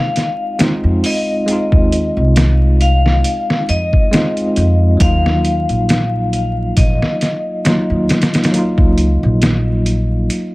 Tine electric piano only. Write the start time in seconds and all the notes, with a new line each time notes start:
Already playing: G#3 C4 D#4 F4
0.59 G#3 C4 D#4 F4
1.46 G#3 C4
1.51 D#4 F4
4.11 G#3 C4 D#4 F4
4.97 F#3 A#3
5.02 D#4 F4
7.65 F#3 A#3 D#4 F4
8.51 F#3 A#3
8.56 D#4 F4